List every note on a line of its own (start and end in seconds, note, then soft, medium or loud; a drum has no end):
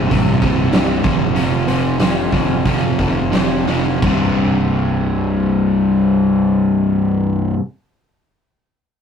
0.00 0.10 C3 medium
0.10 0.40 A1 medium
0.10 0.40 C2 medium
0.10 0.41 G2 medium
0.10 0.41 C3 medium
0.10 kick medium
0.10 open hi-hat medium
0.41 1.00 C1 medium
0.41 0.70 C2 medium
0.41 0.71 G2 medium
0.41 0.72 C3 medium
0.41 kick medium
0.41 open hi-hat soft
0.72 1.01 C2 medium
0.72 1.02 G2 medium
0.72 1.02 C3 medium
0.72 snare medium
0.72 open hi-hat medium
1.03 2.28 F1 medium
1.03 1.33 F2 medium
1.03 1.34 C3 medium
1.03 1.35 F3 medium
1.03 kick medium
1.03 open hi-hat soft
1.34 1.66 F2 medium
1.34 1.67 C3 medium
1.34 1.67 F3 medium
1.34 open hi-hat medium
1.67 1.98 F2 medium
1.67 1.98 C3 medium
1.67 1.99 F3 medium
1.67 open hi-hat soft
1.99 2.31 F2 medium
1.99 2.32 C3 medium
1.99 2.32 F3 medium
1.99 snare loud
1.99 open hi-hat medium
2.32 2.63 F1 medium
2.32 2.64 F2 medium
2.32 2.65 C3 medium
2.32 2.65 F3 medium
2.32 kick medium
2.32 open hi-hat soft
2.65 2.97 F2 medium
2.65 2.96 F2 medium
2.65 2.98 C3 medium
2.65 2.99 F3 medium
2.65 kick medium
2.65 open hi-hat medium
2.99 3.63 F1 medium
2.99 3.30 F2 medium
2.99 3.31 C3 medium
2.99 3.32 F3 medium
2.99 kick medium
2.99 open hi-hat soft
3.32 3.66 F2 medium
3.32 3.67 C3 medium
3.32 3.67 F3 medium
3.32 snare medium
3.32 open hi-hat medium
3.67 4.00 F1 medium
3.67 4.00 F2 medium
3.67 4.01 C3 medium
3.67 4.01 F3 medium
3.67 open hi-hat soft
4.01 7.53 C1 medium
4.01 7.56 C2 medium
4.01 7.58 G2 medium
4.01 7.60 C3 medium
4.01 kick loud
4.01 crash medium